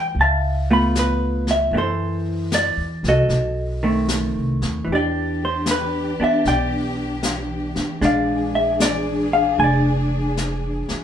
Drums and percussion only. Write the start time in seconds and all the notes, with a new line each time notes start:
0.17 brush sweep
0.95 snare, hi-hat pedal
1.47 snare
1.72 brush sweep
2.52 snare, hi-hat pedal
3.04 snare
3.29 brush sweep, snare
4.08 snare, hi-hat pedal
4.62 snare
4.87 brush sweep
5.66 snare, hi-hat pedal
6.45 brush sweep, snare
7.23 snare, hi-hat pedal
7.76 snare
8.02 brush sweep, snare
8.80 snare, hi-hat pedal
9.59 brush sweep
10.37 snare, hi-hat pedal
10.89 snare